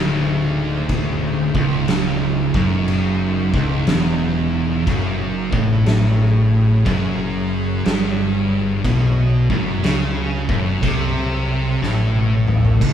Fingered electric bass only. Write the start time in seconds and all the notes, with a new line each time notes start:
Already playing: D1
1.55 C#1
2.55 F#1
3.53 C#1
3.88 E1
4.88 F#1
5.52 A1
6.86 F#1
7.86 G1
8.84 B1
9.50 F#1
9.84 C#2
10.49 F#1
10.83 C2
11.82 A1
12.82 C#1